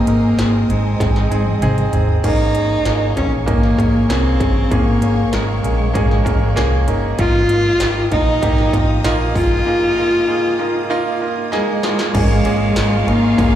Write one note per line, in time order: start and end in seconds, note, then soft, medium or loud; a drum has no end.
0.00 0.66 G#2 medium
0.00 0.66 D#3 medium
0.00 0.72 A#3 medium
0.00 0.07 C4 medium
0.00 0.07 D#4 medium
0.00 0.39 G#4 medium
0.00 2.22 C5 medium
0.00 2.22 D#5 medium
0.00 2.22 G#5 medium
0.00 2.21 D#6 medium
0.07 0.33 G#1 medium
0.07 0.36 C4 medium
0.07 0.36 D#4 medium
0.07 0.37 A#4 medium
0.07 closed hi-hat medium
0.38 0.64 G#1 medium
0.38 0.68 C4 medium
0.38 0.68 D#4 medium
0.38 0.68 G#4 medium
0.38 snare medium
0.38 closed hi-hat medium
0.69 0.95 G#1 medium
0.69 1.94 G#3 medium
0.69 0.99 C4 medium
0.69 0.99 D#4 medium
0.69 0.99 G#4 medium
0.69 closed hi-hat medium
1.00 1.26 G#1 medium
1.00 1.29 C4 medium
1.00 1.29 D#4 medium
1.00 1.29 G#4 medium
1.00 kick loud
1.00 snare soft
1.00 closed hi-hat medium
1.16 snare soft
1.31 1.57 G#1 medium
1.31 1.60 C4 medium
1.31 1.60 D#4 medium
1.31 1.60 G#4 medium
1.31 closed hi-hat medium
1.47 high tom medium
1.62 1.88 G#1 medium
1.62 1.91 C4 loud
1.62 1.91 D#4 medium
1.62 1.91 G#4 loud
1.62 closed hi-hat medium
1.62 mid tom medium
1.78 closed hi-hat soft
1.93 2.18 G#1 medium
1.93 2.22 C4 medium
1.93 2.22 D#4 medium
1.93 2.22 G#4 medium
1.93 closed hi-hat medium
1.93 floor tom medium
2.08 floor tom medium
2.24 2.75 G#1 medium
2.24 3.13 G#2 medium
2.24 2.53 A#3 medium
2.24 2.53 C#4 medium
2.24 3.14 D#4 loud
2.24 2.53 G#4 medium
2.24 12.11 A#4 medium
2.24 7.15 F5 medium
2.24 4.69 G#5 medium
2.24 7.15 C#6 medium
2.24 kick medium
2.24 closed hi-hat medium
2.24 crash medium
2.55 2.84 A#3 medium
2.55 2.84 C#4 medium
2.55 2.84 G#4 medium
2.55 closed hi-hat medium
2.85 3.11 G#1 medium
2.85 3.15 A#3 medium
2.85 3.15 C#4 medium
2.85 3.15 G#4 medium
2.85 snare medium
2.85 closed hi-hat medium
3.16 3.42 A#1 medium
3.16 3.45 A#3 medium
3.16 3.45 C#4 medium
3.16 3.31 C#4 medium
3.16 3.46 G#4 medium
3.16 kick medium
3.16 closed hi-hat medium
3.46 3.73 G#1 medium
3.46 3.76 A#3 medium
3.46 4.12 A#3 medium
3.46 3.76 C#4 medium
3.46 3.76 D#4 medium
3.46 kick loud
3.46 closed hi-hat medium
3.63 snare soft
3.78 4.04 G#1 medium
3.78 4.07 A#3 medium
3.78 4.07 C#4 medium
3.78 4.07 G#4 medium
3.78 kick medium
3.78 closed hi-hat medium
4.09 4.35 C2 medium
4.09 4.38 A#3 medium
4.09 4.73 C4 medium
4.09 4.38 C#4 medium
4.09 4.38 G#4 medium
4.09 snare loud
4.09 closed hi-hat medium
4.40 4.66 G1 medium
4.40 4.69 A#3 medium
4.40 4.69 C#4 medium
4.40 4.69 G#4 medium
4.40 kick medium
4.40 closed hi-hat medium
4.71 5.22 G#1 loud
4.71 5.60 G#2 medium
4.71 5.00 A#3 medium
4.71 5.35 A#3 medium
4.71 5.00 C#4 medium
4.71 5.00 G#4 medium
4.71 7.17 G5 medium
4.71 kick medium
4.71 closed hi-hat medium
5.01 5.31 A#3 medium
5.01 5.31 C#4 medium
5.01 5.31 G#4 medium
5.01 closed hi-hat medium
5.33 5.59 G#1 medium
5.33 6.88 G#3 medium
5.33 5.62 A#3 medium
5.33 5.62 C#4 medium
5.33 5.62 A#4 medium
5.33 snare medium
5.33 closed hi-hat medium
5.63 5.89 A#1 medium
5.63 5.92 A#3 medium
5.63 5.92 C#4 medium
5.63 5.93 G#4 medium
5.63 closed hi-hat medium
5.94 6.21 G#1 medium
5.94 6.23 A#3 medium
5.94 6.23 C#4 medium
5.94 6.24 G#4 loud
5.94 kick loud
5.94 closed hi-hat medium
6.11 snare soft
6.24 6.51 G#1 medium
6.24 6.54 A#3 medium
6.24 6.54 C#4 medium
6.24 6.55 A#4 medium
6.24 kick medium
6.24 closed hi-hat medium
6.56 6.82 C2 medium
6.56 6.85 A#3 loud
6.56 6.86 C#4 loud
6.56 6.86 G#4 loud
6.56 snare loud
6.56 closed hi-hat medium
6.87 7.13 G1 medium
6.87 7.17 A#3 medium
6.87 7.17 C#4 medium
6.87 7.17 D#4 medium
6.87 closed hi-hat medium
7.19 7.70 G#1 medium
7.19 8.08 G#2 medium
7.19 7.48 A#3 medium
7.19 7.48 D#4 medium
7.19 7.48 F4 medium
7.19 8.08 F4 loud
7.19 12.11 D#5 medium
7.19 12.11 F5 medium
7.19 12.11 D#6 medium
7.19 kick medium
7.19 closed hi-hat medium
7.49 7.79 A#3 medium
7.49 7.79 D#4 medium
7.49 7.79 F4 medium
7.49 closed hi-hat medium
7.80 8.06 G#1 medium
7.80 8.10 A#3 medium
7.80 8.10 D#4 medium
7.80 8.10 G4 medium
7.80 snare loud
7.80 closed hi-hat medium
8.11 8.37 A#1 medium
8.11 8.40 A#3 medium
8.11 8.40 D#4 medium
8.11 9.01 D#4 loud
8.11 8.41 F4 medium
8.11 kick medium
8.11 closed hi-hat medium
8.42 8.68 G#1 medium
8.42 8.71 A#3 medium
8.42 8.71 D#4 medium
8.42 8.72 G4 loud
8.42 kick loud
8.42 closed hi-hat medium
8.58 snare soft
8.73 8.99 G#1 medium
8.73 9.03 A#3 medium
8.73 9.03 D#4 medium
8.73 9.03 F4 medium
8.73 kick medium
8.73 closed hi-hat medium
9.04 9.30 A#1 medium
9.04 9.34 A#3 loud
9.04 9.34 D#4 loud
9.04 9.34 F4 loud
9.04 snare loud
9.04 closed hi-hat medium
9.35 9.61 G1 medium
9.35 9.65 A#3 medium
9.35 9.65 D#4 medium
9.35 11.18 F4 loud
9.35 9.65 G#4 medium
9.35 kick medium
9.35 open hi-hat medium
9.66 10.56 G#2 medium
9.66 9.95 A#3 medium
9.66 9.95 D#4 medium
9.66 9.96 G#4 medium
9.97 10.26 A#3 medium
9.97 10.26 D#4 medium
9.97 10.26 F4 medium
10.28 10.57 A#3 medium
10.28 10.57 D#4 medium
10.28 10.57 G#4 medium
10.59 10.88 A#3 medium
10.59 10.88 D#4 medium
10.59 10.88 F4 medium
10.90 11.19 A#3 loud
10.90 11.19 D#4 loud
10.90 11.20 F4 loud
11.21 11.50 A#3 medium
11.21 11.51 D#4 medium
11.21 11.51 F4 medium
11.52 11.82 G#3 medium
11.52 11.81 A#3 loud
11.52 11.81 D#4 loud
11.52 11.81 G#4 loud
11.52 snare medium
11.83 12.13 G#3 medium
11.83 12.12 A#3 medium
11.83 12.12 D#4 medium
11.83 12.13 F4 medium
11.83 snare medium
11.99 snare medium
12.14 12.40 G#1 loud
12.14 13.03 G#2 medium
12.14 13.10 G#3 medium
12.14 12.43 A#3 medium
12.14 12.43 C#4 medium
12.14 13.55 F4 medium
12.14 12.44 G#4 loud
12.14 13.55 A#4 medium
12.14 13.55 F5 medium
12.14 13.55 G#5 medium
12.14 13.55 C#6 medium
12.14 kick medium
12.14 crash medium
12.14 ride medium
12.45 12.71 G#1 medium
12.45 12.74 A#3 medium
12.45 12.74 C#4 medium
12.45 12.74 G#4 loud
12.45 ride medium
12.76 13.02 G#1 loud
12.76 13.05 A#3 medium
12.76 13.06 C#4 medium
12.76 13.06 G#4 medium
12.76 snare loud
12.76 ride medium
13.07 13.33 G#1 medium
13.07 13.36 A#3 medium
13.07 13.55 A#3 medium
13.07 13.36 C#4 medium
13.07 13.37 D#4 medium
13.07 ride soft
13.38 13.55 G#1 medium
13.38 13.55 A#3 medium
13.38 13.55 C#4 medium
13.38 13.55 G#4 medium
13.38 kick loud
13.38 ride medium